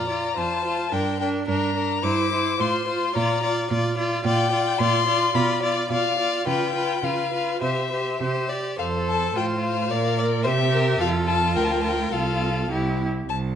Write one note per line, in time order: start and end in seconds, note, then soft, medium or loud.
0.00 0.28 A#2 soft
0.00 0.39 A#5 soft
0.07 0.37 F4 soft
0.07 0.35 D5 soft
0.36 0.83 F2 soft
0.36 0.65 F4 soft
0.36 0.64 C5 soft
0.36 0.94 A5 medium
0.64 0.92 F4 soft
0.64 0.91 C5 soft
0.92 1.39 G2 soft
0.92 1.20 D4 soft
0.92 1.19 A#4 soft
0.92 1.20 G5 soft
1.20 1.48 D4 soft
1.20 1.47 A#4 soft
1.20 1.28 G5 soft
1.48 1.95 G2 medium
1.48 1.76 D4 soft
1.48 1.75 A#4 soft
1.48 2.05 A#5 medium
1.76 2.03 D4 soft
1.76 2.03 A#4 soft
2.03 2.51 G2 soft
2.03 2.31 E4 soft
2.03 2.32 C5 soft
2.03 2.62 D6 medium
2.32 2.60 E4 soft
2.32 2.59 C5 soft
2.59 3.06 A2 medium
2.59 2.87 F4 soft
2.59 2.87 C5 soft
2.59 3.17 C6 medium
2.87 3.15 F4 soft
2.87 3.15 C5 soft
3.15 3.62 A#2 medium
3.15 3.42 F4 soft
3.15 3.42 D5 soft
3.15 3.43 A#5 medium
3.43 3.70 F4 soft
3.43 3.70 D5 soft
3.70 4.16 A#2 medium
3.70 3.97 F4 soft
3.70 3.96 D5 soft
3.97 4.24 F4 soft
3.97 4.24 D5 soft
4.25 4.70 A#2 medium
4.25 4.51 F4 medium
4.25 4.52 D5 medium
4.25 4.80 G5 medium
4.52 4.79 F4 soft
4.52 4.79 D5 soft
4.79 5.26 A#2 medium
4.79 5.06 F4 medium
4.79 5.07 D5 medium
4.79 5.36 C6 medium
5.07 5.34 F4 soft
5.07 5.34 D5 soft
5.35 5.81 B2 medium
5.35 5.62 F4 medium
5.35 5.62 D5 medium
5.35 5.62 B5 medium
5.62 5.89 F4 soft
5.62 5.90 D5 medium
5.62 5.90 D5 soft
5.90 6.37 B2 medium
5.90 6.18 F4 soft
5.90 6.18 D5 soft
5.90 6.46 F5 medium
6.18 6.46 F4 soft
6.18 6.46 D5 soft
6.46 6.94 C#3 medium
6.46 6.74 F4 medium
6.46 6.74 B4 soft
6.46 7.05 G5 medium
6.75 7.03 F4 soft
6.75 7.03 B4 soft
7.03 7.52 C#3 soft
7.03 7.32 F4 soft
7.03 7.32 B4 soft
7.03 7.62 F5 medium
7.33 7.61 F4 soft
7.33 7.60 B4 soft
7.61 8.11 C3 soft
7.61 7.91 G4 soft
7.61 7.90 C5 soft
7.61 8.49 E5 soft
7.90 8.20 G4 soft
7.90 8.20 C5 soft
8.20 8.69 C3 soft
8.20 8.50 G4 soft
8.20 8.50 C5 soft
8.49 8.79 G4 soft
8.49 8.78 D5 soft
8.78 9.32 F2 soft
8.78 9.38 A4 soft
8.78 9.31 C5 soft
8.78 8.87 F5 soft
9.09 9.36 A5 medium
9.35 9.93 A2 soft
9.35 9.91 F4 soft
9.35 9.92 C5 soft
9.35 9.45 G5 medium
9.65 10.21 F5 medium
9.91 10.47 A#2 soft
9.91 10.47 A#4 soft
9.91 10.17 D5 soft
10.18 10.26 D5 soft
10.18 10.45 D5 medium
10.44 10.99 C3 soft
10.44 11.02 G4 soft
10.44 10.52 C5 medium
10.44 10.99 E5 medium
10.72 11.00 A#4 medium
10.99 11.58 F2 medium
10.99 12.13 F4 medium
10.99 11.54 A4 soft
10.99 11.08 F5 medium
11.28 11.58 A5 medium
11.55 12.12 D2 soft
11.55 11.83 A#4 medium
11.55 11.65 G5 medium
11.64 11.73 A5 medium
11.71 11.82 G5 soft
11.81 12.13 A#4 soft
11.81 11.90 A5 medium
11.88 12.14 G5 medium
12.12 12.70 C2 soft
12.12 12.70 F4 soft
12.12 12.70 A4 soft
12.12 12.71 F5 medium
12.71 13.28 C2 soft
12.71 13.08 E4 soft
12.71 13.08 G4 soft
13.29 13.55 C2 medium
13.29 13.37 A5 medium